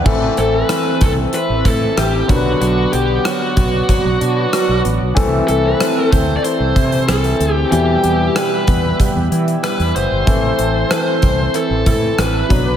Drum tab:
CC |x---------------|----------------|----------------|----------------|
HH |--x-x-x-x-x-x-x-|x-x-x-x-x-x-x-x-|x-x-x-x-x-xxxxx-|x-x-x-x-x-xxxxx-|
SD |----r-------r---|----r-------r---|----r-------r---|----r-------r---|
BD |o-----o---o---o-|------o-o-------|o-----o---o-----|------o-o-------|

CC |----------------|
HH |x-x-x-x-x-x-x-x-|
SD |----r-------r---|
BD |o-----o---o---o-|